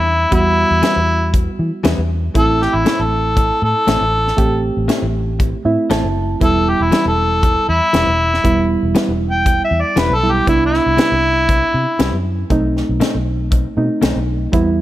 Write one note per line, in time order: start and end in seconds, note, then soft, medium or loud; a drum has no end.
0.00 0.24 E2 medium
0.00 0.27 G3 medium
0.00 0.28 B3 medium
0.00 0.28 D4 medium
0.00 0.31 E4 loud
0.31 0.63 E2 medium
0.31 2.31 G3 medium
0.31 2.31 B3 medium
0.31 1.32 E4 medium
0.31 2.31 F#4 medium
0.31 kick medium
0.31 closed hi-hat medium
0.71 0.80 E2 medium
0.83 0.98 E3 medium
0.83 0.99 G3 medium
0.83 0.99 B3 medium
0.83 0.99 E4 medium
0.83 snare loud
0.83 closed hi-hat medium
0.96 1.47 E2 medium
1.34 kick loud
1.34 closed hi-hat medium
1.59 1.70 E3 medium
1.84 1.95 E2 medium
1.84 2.00 E3 medium
1.84 2.00 G3 medium
1.84 2.00 B3 medium
1.84 2.01 E4 medium
1.84 snare loud
1.84 closed hi-hat medium
1.98 2.28 E2 medium
2.34 2.66 A1 medium
2.34 4.34 A3 medium
2.34 4.34 C4 medium
2.34 4.35 E4 medium
2.34 2.64 A4 medium
2.34 kick loud
2.34 closed hi-hat medium
2.62 2.77 G4 medium
2.62 snare soft
2.74 2.84 A1 medium
2.74 3.03 E4 medium
2.85 3.01 A2 medium
2.85 3.02 A3 medium
2.85 3.02 C4 medium
2.85 3.02 E4 medium
2.85 snare medium
2.85 closed hi-hat medium
3.00 3.50 A1 medium
3.00 3.62 A4 medium
3.37 kick loud
3.37 closed hi-hat medium
3.62 3.73 A2 medium
3.62 4.62 A4 medium
3.87 3.98 A1 medium
3.87 4.03 A2 medium
3.87 4.03 A3 medium
3.87 4.04 C4 medium
3.87 4.04 E4 medium
3.87 snare loud
3.87 closed hi-hat medium
4.01 4.31 A1 medium
4.27 snare soft
4.37 4.69 A1 medium
4.37 5.62 A3 medium
4.37 5.63 C4 medium
4.37 5.63 G4 medium
4.37 kick loud
4.37 closed hi-hat medium
4.77 4.87 A1 medium
4.88 5.04 A2 medium
4.88 5.05 A3 medium
4.88 5.05 C4 medium
4.88 5.05 E4 medium
4.88 snare loud
4.88 closed hi-hat medium
5.02 5.53 A1 medium
5.40 kick loud
5.40 closed hi-hat medium
5.65 5.76 A2 medium
5.65 6.41 A3 medium
5.65 6.42 C4 medium
5.65 6.41 E4 medium
5.65 5.89 E5 medium
5.90 6.01 A1 medium
5.90 6.06 A2 medium
5.90 6.06 A3 medium
5.90 6.07 C4 medium
5.90 6.07 E4 medium
5.90 6.38 A5 medium
5.90 snare loud
5.90 closed hi-hat medium
6.04 6.34 F#1 medium
6.40 6.72 E1 medium
6.40 8.40 G3 medium
6.40 8.40 B3 medium
6.40 8.41 E4 medium
6.40 6.71 A4 medium
6.40 kick loud
6.40 closed hi-hat medium
6.69 6.84 G4 medium
6.80 6.90 E1 medium
6.80 7.06 E4 medium
6.92 7.08 E3 medium
6.92 7.08 G3 medium
6.92 7.08 B3 medium
6.92 7.09 E4 medium
6.92 snare loud
6.92 closed hi-hat medium
7.05 7.56 E1 medium
7.05 7.68 A4 medium
7.43 kick loud
7.43 closed hi-hat medium
7.69 7.79 E2 medium
7.69 8.67 E4 loud
7.93 8.05 E1 medium
7.93 8.09 E3 medium
7.93 8.10 G3 medium
7.93 8.10 B3 medium
7.93 8.10 E4 medium
7.93 snare loud
7.93 closed hi-hat medium
8.07 8.37 E1 medium
8.34 snare soft
8.43 8.76 E1 medium
8.43 10.18 G3 medium
8.43 10.18 B3 medium
8.43 10.19 E4 medium
8.43 kick loud
8.43 closed hi-hat medium
8.83 8.93 E1 medium
8.95 9.11 E3 medium
8.95 9.11 G3 medium
8.95 9.11 B3 medium
8.95 9.12 E4 medium
8.95 snare loud
8.95 closed hi-hat medium
9.08 9.59 E1 medium
9.31 9.63 G5 medium
9.46 kick loud
9.46 closed hi-hat medium
9.64 9.83 E5 medium
9.71 9.82 E2 medium
9.81 10.00 D5 medium
9.96 10.07 E1 medium
9.96 10.12 E3 medium
9.96 10.13 G3 medium
9.96 10.13 B3 medium
9.96 10.13 E4 medium
9.96 10.17 B4 medium
9.96 snare loud
9.96 closed hi-hat medium
10.10 10.40 B1 medium
10.15 10.34 A4 medium
10.22 10.48 G3 soft
10.22 10.46 B3 soft
10.22 10.48 E4 medium
10.33 10.48 G4 medium
10.47 10.78 C2 medium
10.47 12.46 B3 medium
10.47 12.47 D4 medium
10.47 10.65 E4 medium
10.47 12.47 E4 medium
10.47 kick medium
10.47 closed hi-hat medium
10.66 12.13 E4 medium
10.74 snare soft
10.86 10.96 C2 medium
10.97 11.14 C3 medium
10.97 11.14 G3 medium
10.97 11.14 B3 medium
10.97 11.15 E4 medium
10.97 snare loud
10.97 closed hi-hat medium
11.12 11.62 C2 medium
11.49 kick loud
11.49 closed hi-hat medium
11.74 11.85 C3 medium
11.99 12.10 C2 medium
11.99 12.15 C3 medium
11.99 12.16 G3 medium
11.99 12.16 B3 medium
11.99 12.16 E4 medium
11.99 snare loud
11.99 closed hi-hat medium
12.13 12.43 F#2 medium
12.50 12.81 B1 medium
12.50 13.74 A3 medium
12.50 13.75 C4 medium
12.50 13.75 D#4 medium
12.50 kick medium
12.50 closed hi-hat soft
12.77 snare soft
12.89 12.99 B1 medium
13.00 13.16 B2 medium
13.00 13.17 A3 medium
13.00 13.17 C4 medium
13.00 13.17 D#4 medium
13.00 snare medium
13.00 closed hi-hat medium
13.15 13.65 B1 medium
13.52 kick loud
13.52 closed hi-hat medium
13.77 13.88 B2 medium
13.77 14.53 A3 medium
13.77 14.53 C4 medium
13.77 14.53 D#4 medium
14.02 14.13 B1 medium
14.02 14.18 B2 medium
14.02 14.18 A3 medium
14.02 14.18 C4 medium
14.02 14.19 D#4 loud
14.02 snare loud
14.02 closed hi-hat medium
14.16 14.46 B1 medium
14.52 14.81 E2 medium
14.52 14.81 G3 medium
14.52 14.81 B3 medium
14.52 14.81 E4 medium
14.52 kick medium
14.52 closed hi-hat medium